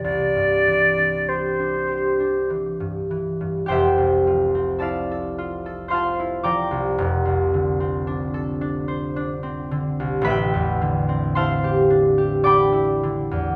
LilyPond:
<<
  \new Staff \with { instrumentName = "Flute" } { \time 3/4 \key c \major \tempo 4 = 54 d''4 c''4 r4 | \key f \major r2. | r2. | \key a \minor r2. | }
  \new Staff \with { instrumentName = "Harp" } { \time 3/4 \key c \major << { r2. | \key f \major <g' c'' e'' g''>4 <a' d'' f'' a''>4 <c'' f'' a'' c'''>8 <d'' g'' bes'' d'''>8~ | <d'' g'' bes'' d'''>2. | \key a \minor <b' e'' g'' b''>4 <c'' f'' a'' c'''>4 <d'' g'' b'' d'''>4 | } \\ { <c, c'>16 g,16 e16 d'16 g'16 d'16 g'16 d'16 e16 g,16 e16 g,16 | f,,16 c,16 f16 c'16 e'16 a'16 f'16 a'16 f'16 e'16 f16 c,16 | f,,16 c,16 d16 c'16 d'16 a'16 d'16 c''16 d'16 c'16 d16 c,16 | a,,16 e,16 d16 c'16 e'16 g'16 d'16 g'16 d'16 e'16 d16 e,16 | } >> }
>>